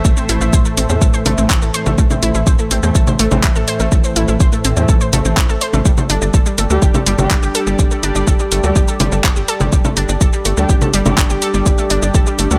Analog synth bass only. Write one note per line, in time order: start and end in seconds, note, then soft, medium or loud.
0.05 0.14 A1 loud
0.29 0.38 A1 loud
0.41 0.50 A1 medium
0.53 0.62 A1 loud
0.77 0.86 A1 loud
0.90 0.98 E2 medium
1.02 1.10 A1 loud
1.26 1.35 A1 medium
1.38 1.47 A1 medium
1.50 1.59 A1 loud
1.62 1.71 A1 medium
1.86 1.95 A1 medium
1.98 2.07 A1 loud
2.23 2.31 A1 loud
2.35 2.43 A1 medium
2.47 2.55 A1 loud
2.71 2.80 A1 loud
2.83 2.92 E2 medium
2.95 3.04 A1 loud
3.19 3.28 A1 loud
3.32 3.40 A1 medium
3.44 3.52 A1 loud
3.56 3.64 A1 medium
3.80 3.89 A1 medium
3.92 4.01 A1 loud
4.16 4.25 A1 loud
4.28 4.37 A1 medium
4.40 4.49 A1 loud
4.65 4.73 A1 loud
4.77 4.85 E2 medium
4.89 4.97 A1 loud
5.13 5.22 A1 loud
5.25 5.34 A1 medium
5.37 5.46 A1 loud
5.49 5.58 A1 medium
5.73 5.82 A1 medium
5.86 5.94 G1 loud
6.10 6.18 G1 loud
6.22 6.30 G1 medium
6.34 6.43 G1 loud
6.58 6.67 G1 loud
6.70 6.79 D2 medium
6.82 6.91 G1 loud
7.06 7.15 G1 medium
7.19 7.27 G1 medium
7.31 7.39 G1 loud
7.43 7.51 G1 medium
7.67 7.76 G1 medium
7.79 7.88 G1 loud
8.03 8.12 G1 loud
8.15 8.24 G1 medium
8.27 8.36 G1 loud
8.52 8.60 G1 loud
8.64 8.72 D2 medium
8.76 8.84 G1 loud
9.00 9.09 G1 loud
9.12 9.21 G1 medium
9.24 9.33 G1 loud
9.36 9.45 G1 medium
9.60 9.69 G1 medium
9.73 9.81 G1 loud
9.97 10.05 G1 loud
10.09 10.18 G1 medium
10.21 10.30 G1 loud
10.45 10.54 G1 loud
10.57 10.66 D2 medium
10.69 10.78 G1 loud
10.94 11.02 G1 medium
11.06 11.14 G1 medium
11.18 11.26 G1 loud
11.30 11.39 G1 medium
11.54 11.63 G1 medium
11.66 11.75 G1 loud
11.90 11.99 G1 loud
12.02 12.11 G1 medium
12.15 12.23 G1 loud
12.39 12.47 G1 medium
12.51 12.59 D2 medium